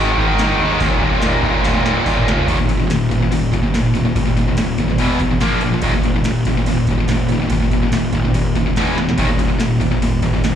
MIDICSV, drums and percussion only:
0, 0, Header, 1, 2, 480
1, 0, Start_track
1, 0, Tempo, 418994
1, 926, Time_signature, 4, 2, 24, 8
1, 12088, End_track
2, 0, Start_track
2, 0, Title_t, "Drums"
2, 203, Note_on_c, 9, 36, 86
2, 317, Note_off_c, 9, 36, 0
2, 442, Note_on_c, 9, 46, 62
2, 452, Note_on_c, 9, 38, 117
2, 556, Note_off_c, 9, 46, 0
2, 566, Note_off_c, 9, 38, 0
2, 921, Note_on_c, 9, 46, 65
2, 923, Note_on_c, 9, 36, 115
2, 1035, Note_off_c, 9, 46, 0
2, 1037, Note_off_c, 9, 36, 0
2, 1161, Note_on_c, 9, 36, 92
2, 1275, Note_off_c, 9, 36, 0
2, 1392, Note_on_c, 9, 46, 61
2, 1403, Note_on_c, 9, 38, 113
2, 1507, Note_off_c, 9, 46, 0
2, 1517, Note_off_c, 9, 38, 0
2, 1640, Note_on_c, 9, 36, 85
2, 1755, Note_off_c, 9, 36, 0
2, 1883, Note_on_c, 9, 46, 63
2, 1894, Note_on_c, 9, 38, 73
2, 1998, Note_off_c, 9, 46, 0
2, 2000, Note_on_c, 9, 48, 66
2, 2008, Note_off_c, 9, 38, 0
2, 2115, Note_off_c, 9, 48, 0
2, 2128, Note_on_c, 9, 38, 82
2, 2238, Note_on_c, 9, 47, 70
2, 2242, Note_off_c, 9, 38, 0
2, 2353, Note_off_c, 9, 47, 0
2, 2359, Note_on_c, 9, 36, 85
2, 2360, Note_on_c, 9, 46, 57
2, 2474, Note_off_c, 9, 36, 0
2, 2475, Note_off_c, 9, 46, 0
2, 2481, Note_on_c, 9, 45, 76
2, 2595, Note_off_c, 9, 45, 0
2, 2614, Note_on_c, 9, 38, 105
2, 2729, Note_off_c, 9, 38, 0
2, 2730, Note_on_c, 9, 43, 86
2, 2839, Note_on_c, 9, 36, 114
2, 2845, Note_off_c, 9, 43, 0
2, 2845, Note_on_c, 9, 49, 80
2, 2954, Note_off_c, 9, 36, 0
2, 2959, Note_off_c, 9, 49, 0
2, 3079, Note_on_c, 9, 49, 63
2, 3194, Note_off_c, 9, 49, 0
2, 3323, Note_on_c, 9, 49, 83
2, 3333, Note_on_c, 9, 38, 107
2, 3437, Note_off_c, 9, 49, 0
2, 3448, Note_off_c, 9, 38, 0
2, 3559, Note_on_c, 9, 36, 81
2, 3567, Note_on_c, 9, 49, 56
2, 3674, Note_off_c, 9, 36, 0
2, 3682, Note_off_c, 9, 49, 0
2, 3801, Note_on_c, 9, 49, 83
2, 3916, Note_off_c, 9, 49, 0
2, 4038, Note_on_c, 9, 36, 86
2, 4045, Note_on_c, 9, 49, 56
2, 4152, Note_off_c, 9, 36, 0
2, 4159, Note_off_c, 9, 49, 0
2, 4287, Note_on_c, 9, 49, 72
2, 4297, Note_on_c, 9, 38, 104
2, 4401, Note_off_c, 9, 49, 0
2, 4412, Note_off_c, 9, 38, 0
2, 4412, Note_on_c, 9, 38, 30
2, 4524, Note_on_c, 9, 49, 54
2, 4526, Note_off_c, 9, 38, 0
2, 4639, Note_off_c, 9, 49, 0
2, 4759, Note_on_c, 9, 36, 113
2, 4764, Note_on_c, 9, 49, 83
2, 4874, Note_off_c, 9, 36, 0
2, 4879, Note_off_c, 9, 49, 0
2, 5007, Note_on_c, 9, 49, 55
2, 5121, Note_off_c, 9, 49, 0
2, 5234, Note_on_c, 9, 49, 77
2, 5244, Note_on_c, 9, 38, 110
2, 5348, Note_off_c, 9, 49, 0
2, 5359, Note_off_c, 9, 38, 0
2, 5474, Note_on_c, 9, 36, 81
2, 5476, Note_on_c, 9, 49, 56
2, 5588, Note_off_c, 9, 36, 0
2, 5590, Note_off_c, 9, 49, 0
2, 5607, Note_on_c, 9, 38, 34
2, 5709, Note_on_c, 9, 49, 74
2, 5722, Note_off_c, 9, 38, 0
2, 5823, Note_off_c, 9, 49, 0
2, 5954, Note_on_c, 9, 36, 88
2, 5954, Note_on_c, 9, 49, 58
2, 6068, Note_off_c, 9, 49, 0
2, 6069, Note_off_c, 9, 36, 0
2, 6191, Note_on_c, 9, 49, 73
2, 6201, Note_on_c, 9, 38, 101
2, 6306, Note_off_c, 9, 49, 0
2, 6316, Note_off_c, 9, 38, 0
2, 6325, Note_on_c, 9, 38, 31
2, 6426, Note_on_c, 9, 49, 57
2, 6440, Note_off_c, 9, 38, 0
2, 6540, Note_off_c, 9, 49, 0
2, 6663, Note_on_c, 9, 49, 88
2, 6669, Note_on_c, 9, 36, 112
2, 6778, Note_off_c, 9, 49, 0
2, 6784, Note_off_c, 9, 36, 0
2, 6913, Note_on_c, 9, 49, 61
2, 7027, Note_off_c, 9, 49, 0
2, 7150, Note_on_c, 9, 49, 88
2, 7160, Note_on_c, 9, 38, 114
2, 7265, Note_off_c, 9, 49, 0
2, 7275, Note_off_c, 9, 38, 0
2, 7391, Note_on_c, 9, 49, 65
2, 7395, Note_on_c, 9, 36, 82
2, 7506, Note_off_c, 9, 49, 0
2, 7509, Note_off_c, 9, 36, 0
2, 7633, Note_on_c, 9, 49, 84
2, 7747, Note_off_c, 9, 49, 0
2, 7871, Note_on_c, 9, 49, 60
2, 7875, Note_on_c, 9, 36, 86
2, 7986, Note_off_c, 9, 49, 0
2, 7989, Note_off_c, 9, 36, 0
2, 8110, Note_on_c, 9, 49, 75
2, 8120, Note_on_c, 9, 38, 110
2, 8224, Note_off_c, 9, 49, 0
2, 8235, Note_off_c, 9, 38, 0
2, 8242, Note_on_c, 9, 38, 31
2, 8348, Note_on_c, 9, 49, 61
2, 8357, Note_off_c, 9, 38, 0
2, 8463, Note_off_c, 9, 49, 0
2, 8588, Note_on_c, 9, 49, 81
2, 8596, Note_on_c, 9, 36, 120
2, 8703, Note_off_c, 9, 49, 0
2, 8711, Note_off_c, 9, 36, 0
2, 8837, Note_on_c, 9, 49, 56
2, 8951, Note_off_c, 9, 49, 0
2, 9072, Note_on_c, 9, 49, 82
2, 9082, Note_on_c, 9, 38, 112
2, 9186, Note_off_c, 9, 49, 0
2, 9197, Note_off_c, 9, 38, 0
2, 9310, Note_on_c, 9, 49, 59
2, 9316, Note_on_c, 9, 36, 88
2, 9424, Note_off_c, 9, 49, 0
2, 9431, Note_off_c, 9, 36, 0
2, 9557, Note_on_c, 9, 49, 77
2, 9672, Note_off_c, 9, 49, 0
2, 9796, Note_on_c, 9, 36, 78
2, 9800, Note_on_c, 9, 49, 54
2, 9911, Note_off_c, 9, 36, 0
2, 9915, Note_off_c, 9, 49, 0
2, 10039, Note_on_c, 9, 49, 69
2, 10049, Note_on_c, 9, 38, 102
2, 10153, Note_off_c, 9, 49, 0
2, 10163, Note_off_c, 9, 38, 0
2, 10285, Note_on_c, 9, 38, 60
2, 10399, Note_off_c, 9, 38, 0
2, 10409, Note_on_c, 9, 38, 86
2, 10513, Note_on_c, 9, 36, 112
2, 10513, Note_on_c, 9, 49, 92
2, 10524, Note_off_c, 9, 38, 0
2, 10628, Note_off_c, 9, 36, 0
2, 10628, Note_off_c, 9, 49, 0
2, 10758, Note_on_c, 9, 49, 58
2, 10872, Note_off_c, 9, 49, 0
2, 10994, Note_on_c, 9, 49, 82
2, 11005, Note_on_c, 9, 38, 115
2, 11109, Note_off_c, 9, 49, 0
2, 11119, Note_off_c, 9, 38, 0
2, 11235, Note_on_c, 9, 36, 86
2, 11239, Note_on_c, 9, 49, 62
2, 11350, Note_off_c, 9, 36, 0
2, 11354, Note_off_c, 9, 49, 0
2, 11481, Note_on_c, 9, 49, 84
2, 11595, Note_off_c, 9, 49, 0
2, 11712, Note_on_c, 9, 49, 60
2, 11713, Note_on_c, 9, 36, 81
2, 11827, Note_off_c, 9, 36, 0
2, 11827, Note_off_c, 9, 49, 0
2, 11958, Note_on_c, 9, 49, 77
2, 11968, Note_on_c, 9, 38, 111
2, 12072, Note_off_c, 9, 49, 0
2, 12082, Note_off_c, 9, 38, 0
2, 12088, End_track
0, 0, End_of_file